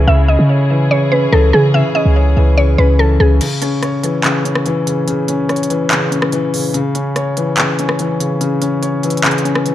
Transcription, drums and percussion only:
3.41 closed hi-hat, crash
3.62 closed hi-hat
3.83 cross-stick, closed hi-hat
4.04 closed hi-hat
4.24 clap, closed hi-hat
4.45 closed hi-hat
4.55 cross-stick
4.66 closed hi-hat
4.87 closed hi-hat
5.08 closed hi-hat
5.28 closed hi-hat
5.49 cross-stick, closed hi-hat
5.56 closed hi-hat
5.63 closed hi-hat
5.70 closed hi-hat
5.91 clap, closed hi-hat
6.12 closed hi-hat
6.22 cross-stick
6.32 closed hi-hat
6.54 open hi-hat
6.74 closed hi-hat
6.95 closed hi-hat
7.16 cross-stick, closed hi-hat
7.37 closed hi-hat
7.58 clap, closed hi-hat
7.79 closed hi-hat
7.89 cross-stick
7.99 closed hi-hat
8.20 closed hi-hat
8.41 closed hi-hat
8.62 closed hi-hat
8.83 closed hi-hat
9.03 closed hi-hat
9.10 closed hi-hat
9.17 closed hi-hat
9.24 clap, closed hi-hat
9.31 closed hi-hat
9.38 closed hi-hat
9.45 closed hi-hat
9.55 cross-stick
9.66 closed hi-hat

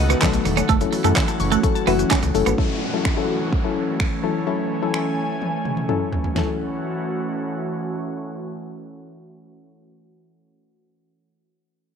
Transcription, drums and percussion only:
0.10 closed hi-hat, shaker
0.22 kick, snare, clap, closed hi-hat, shaker
0.33 closed hi-hat, shaker
0.45 open hi-hat, shaker
0.57 closed hi-hat, shaker
0.69 kick, closed hi-hat, shaker
0.81 closed hi-hat, shaker
0.93 open hi-hat, shaker
1.04 closed hi-hat, shaker
1.16 kick, snare, clap, closed hi-hat, shaker
1.28 closed hi-hat, shaker
1.40 open hi-hat, shaker
1.52 closed hi-hat, shaker
1.64 kick, closed hi-hat, shaker
1.76 closed hi-hat, shaker
1.87 open hi-hat, shaker
1.99 closed hi-hat, shaker
2.11 kick, snare, clap, closed hi-hat, shaker
2.23 closed hi-hat, shaker
2.35 open hi-hat, shaker
2.47 closed hi-hat, shaker
2.58 kick
3.05 finger snap, kick
3.53 kick
4.00 finger snap, kick
4.94 finger snap
5.42 high tom
5.65 mid tom
5.77 mid tom
5.89 mid tom
6.13 floor tom
6.24 floor tom
6.36 snare, floor tom

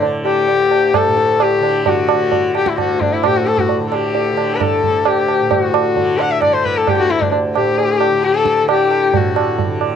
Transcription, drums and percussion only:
0.03 tabla tin
0.25 tabla na
0.48 tabla tin
0.71 tabla na
0.94 tabla na, tabla ge
1.17 tabla te
1.40 tabla na
1.63 tabla na
1.86 tabla tin, tabla ge
2.08 tabla na
2.32 tabla tin, tabla ge
2.55 tabla na
2.66 tabla ke
2.78 tabla na, tabla ge
3.01 tabla ge
3.23 tabla na, tabla ge
3.47 tabla te
3.58 tabla ge
3.69 tabla tin
3.92 tabla na
4.15 tabla tin
4.37 tabla na
4.61 tabla na, tabla ge
4.83 tabla ge
5.05 tabla na
5.28 tabla na
5.51 tabla tin, tabla ge
5.74 tabla na
5.97 tabla tin, tabla ge
6.19 tabla na
6.42 tabla na, tabla ge
6.65 tabla ge
6.87 tabla na, tabla ge
7.10 tabla te
7.21 tabla ge
7.32 tabla tin
7.55 tabla na
7.78 tabla tin
8.01 tabla na
8.23 tabla te
8.34 tabla te
8.45 tabla ke
8.57 tabla te
8.69 tabla na
8.91 tabla na
9.14 tabla tin, tabla ge
9.36 tabla na
9.59 tabla tin, tabla ge
9.81 tabla na

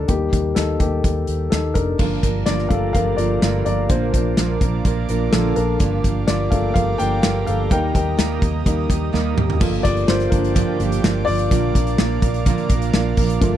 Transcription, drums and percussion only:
0.08 kick, closed hi-hat
0.33 kick, closed hi-hat
0.56 snare, closed hi-hat
0.80 kick, closed hi-hat
1.04 kick, closed hi-hat
1.27 closed hi-hat
1.52 snare, closed hi-hat
1.75 kick, closed hi-hat
1.99 kick, crash
2.23 kick, closed hi-hat
2.46 snare, closed hi-hat
2.58 snare
2.70 kick, closed hi-hat
2.95 kick, closed hi-hat
3.18 closed hi-hat
3.42 snare, closed hi-hat
3.66 closed hi-hat
3.89 kick, closed hi-hat
4.14 kick, closed hi-hat
4.37 snare, closed hi-hat
4.61 kick, closed hi-hat
4.85 kick, closed hi-hat
5.09 closed hi-hat
5.33 snare, closed hi-hat
5.56 closed hi-hat
5.80 kick, closed hi-hat
6.04 kick, closed hi-hat
6.28 snare, closed hi-hat
6.52 kick, closed hi-hat
6.76 kick, closed hi-hat
6.99 closed hi-hat
7.23 snare, closed hi-hat
7.47 closed hi-hat
7.71 kick, closed hi-hat
7.95 kick, closed hi-hat
8.19 snare, closed hi-hat
8.42 kick, closed hi-hat
8.66 kick, closed hi-hat
8.90 kick, closed hi-hat
9.14 snare
9.38 mid tom
9.50 floor tom
9.61 kick, crash
9.73 closed hi-hat
9.85 kick, closed hi-hat
9.97 closed hi-hat
10.08 snare
10.20 snare, closed hi-hat
10.32 kick, closed hi-hat
10.44 closed hi-hat
10.56 kick, closed hi-hat
10.80 closed hi-hat
10.92 closed hi-hat
11.04 snare
11.27 open hi-hat
11.39 closed hi-hat
11.51 kick, closed hi-hat
11.75 kick, closed hi-hat
11.87 closed hi-hat
11.98 snare
12.22 kick, closed hi-hat
12.34 closed hi-hat
12.46 kick, closed hi-hat
12.58 closed hi-hat
12.69 kick, closed hi-hat
12.82 closed hi-hat
12.94 snare
13.17 kick, open hi-hat
13.30 closed hi-hat
13.42 kick, closed hi-hat

